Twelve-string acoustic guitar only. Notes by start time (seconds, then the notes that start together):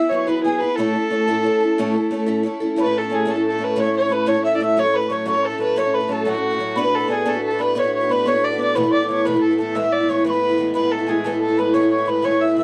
Already playing: B3 E4 G#4
0.11 F#3 B3 E4 G#4
0.27 E3 F#3 B3 E4 G#4
0.44 F#3 B3 E4 G#4
0.61 B3 E4 G#4
0.77 A2 A3 C#4 E4 A4
0.93 C#4 E4 A4
1.10 A3 C#4 E4 A4
1.28 A2 A3 C#4 E4 A4
1.43 A3 C#4 E4 A4
1.60 C#4 E4 A4
1.78 A2 A3 C#4 E4 A4
1.94 C#4 E4 A4
2.11 A3 C#4 E4 A4
2.26 A2 A3 C#4 E4 A4
2.43 A3 C#4 E4 A4
2.60 C#4 E4 A4
2.76 A2 A3 C#4 E4 A4
2.84 C#4 E4 A4
3.01 C#4 E4 A4
3.10 A3 C#4 E4 A4
3.25 A2 A3 C#4 E4 A4
3.34 C#4 E4 A4
3.50 C#4 E4 A4
3.58 A3 C#4 E4 A4
3.76 A2 A3 C#4 E4 A4
3.83 C#4 E4 A4
4.01 C#4 E4 A4
4.09 A3 C#4 E4 A4
4.26 A2 A3 C#4 E4 A4
4.34 C#4 E4 A4
4.51 C#4 E4 A4
4.60 A3 C#4 E4 A4
4.77 F#3 A3 C#4 A4
4.84 A3 C#4 A4
5.01 A3 C#4 A4
5.09 F#3 A3 C#4 A4
5.25 F#3 A3 C#4 A4
5.34 A3 C#4 A4
5.50 A3 C#4 A4
5.58 F#3 A3 C#4 A4
5.76 F#3 A3 C#4 A4
5.83 A3 C#4 A4
6.00 A3 C#4 A4
6.08 F#3 A3 C#4 A4
6.25 F#3 A3 C#4 A4
6.35 A3 C#4 A4
6.51 A3 C#4 A4
6.59 F#3 A3 C#4 A4
6.76 B3 D4 F#4 B4
6.84 D4 F#4 B4
7.00 D4 F#4 B4
7.08 B3 D4 F#4 B4
7.25 B3 D4 F#4 B4
7.33 D4 F#4 B4
7.51 D4 F#4 B4
7.59 B3 D4 F#4 B4
7.75 B3 D4 F#4 B4
7.84 D4 F#4 B4
8.01 D4 F#4 B4
8.09 B3 D4 F#4 B4
8.25 B3 D4 F#4 B4
8.34 D4 F#4 B4
8.50 D4 F#4 B4
8.58 B3 D4 F#4
8.62 B4
8.75 E2 B2 E3 A3 B3 E4
8.83 E3 A3 B3 E4
9.00 E3 A3 B3 E4
9.09 E3 A3 B3 E4
9.25 E2 B2 E3 A3 B3 E4
9.34 E3 A3 B3 E4
9.50 E3 A3 B3 E4
9.58 E3 A3 B3 E4
9.75 E3 G#3 B3 E4
9.82 G#3 B3 E4
10.00 G#3 B3 E4
10.08 E3 G#3 B3 E4
10.24 E3 G#3 B3 E4
10.33 G#3 B3 E4
10.50 G#3 B3 E4
10.58 E3 G#3 B3 E4
10.74 E3 G#3 B3 E4
10.82 G#3 B3 E4
10.99 G#3 B3 E4
11.06 E3 G#3 B3
11.11 E4
11.24 E3 G#3 B3 E4
11.32 G#3 B3 E4
11.49 G#3 B3 E4
11.57 E3 G#3 B3 E4
11.74 E3 G#3 B3 E4
11.82 G#3 B3 E4
11.98 G#3 B3 E4
12.06 E3 G#3 B3 E4
12.22 E3 G#3 B3 E4
12.31 G#3 B3 E4
12.47 G#3 B3 E4
12.56 E3 G#3 B3 E4